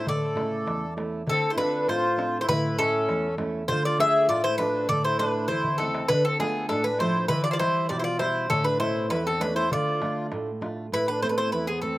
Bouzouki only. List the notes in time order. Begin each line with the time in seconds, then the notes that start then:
0.08 D5
1.29 A4
1.50 C5
1.58 B4
1.89 C5
2.41 C5
2.49 B4
2.79 A4
3.68 C5
3.85 D5
4.00 E5
4.29 D5
4.44 C5
4.58 B4
4.89 D5
5.04 C5
5.19 B4
5.48 C5
5.78 A4
6.08 B4
6.25 A4
6.40 G#4
6.69 A4
6.84 B4
7.00 C5
7.28 B4
7.44 D5
7.51 C5 D5
7.59 C5
7.89 D5
7.99 C5
8.04 D5
8.19 C5
8.50 A4
8.64 B4
8.80 C5
9.10 B4
9.27 A4
9.41 B4
9.56 C5
9.73 D5
10.94 B4
11.08 B4
11.22 C5
11.29 B4
11.38 C5
11.52 B4
11.67 G#4
11.82 A4